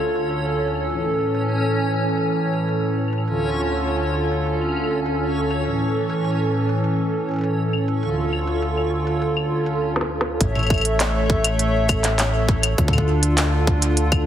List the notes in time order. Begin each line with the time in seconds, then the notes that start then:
Already playing: D2 D3 C#4 F4 A4 C#5
0.16 closed hi-hat
0.31 closed hi-hat
0.68 closed hi-hat
0.75 claves
0.90 A2 E3 C#4, closed hi-hat
1.35 closed hi-hat
1.49 closed hi-hat
1.94 closed hi-hat
2.09 closed hi-hat
2.53 closed hi-hat
2.68 closed hi-hat
2.98 claves
3.08 claves
3.13 closed hi-hat
3.18 claves
3.28 D2 D3 F4 A4, closed hi-hat
3.72 closed hi-hat
3.87 closed hi-hat
4.32 closed hi-hat
4.47 closed hi-hat
4.61 claves
4.69 claves
4.76 claves
4.84 claves
4.91 closed hi-hat
5.06 closed hi-hat
5.50 closed hi-hat, claves
5.65 A2 E3 C#4, closed hi-hat
6.10 closed hi-hat
6.25 closed hi-hat
6.69 closed hi-hat
6.84 closed hi-hat
7.29 closed hi-hat
7.31 closed hi-hat
7.34 closed hi-hat
7.36 closed hi-hat
7.39 closed hi-hat
7.41 closed hi-hat
7.44 closed hi-hat
7.73 claves
7.88 closed hi-hat
8.03 D2 D3 F4 A4, closed hi-hat
8.33 claves
8.47 closed hi-hat
8.62 closed hi-hat
8.77 claves
9.07 closed hi-hat
9.22 closed hi-hat
9.37 claves
9.66 closed hi-hat
9.96 snare
10.01 snare
10.21 snare
10.40 A1 A3 A4 C#5 E5, kick, closed hi-hat
10.55 mid tom, claves
10.59 claves
10.63 claves
10.67 kick, claves
10.70 claves
10.74 claves
10.78 claves
10.81 closed hi-hat, claves
11.00 clap, closed hi-hat
11.30 kick
11.44 closed hi-hat, claves
11.59 closed hi-hat
11.89 kick, cabasa, claves
12.04 clap, closed hi-hat
12.19 clap, closed hi-hat
12.48 kick
12.63 closed hi-hat, claves
12.78 D2 D3 D4 F4 A4, kick, closed hi-hat
12.88 kick
12.93 mid tom, claves
12.98 kick
13.23 closed hi-hat
13.38 clap, closed hi-hat
13.67 kick
13.82 closed hi-hat
13.97 closed hi-hat
14.12 kick, claves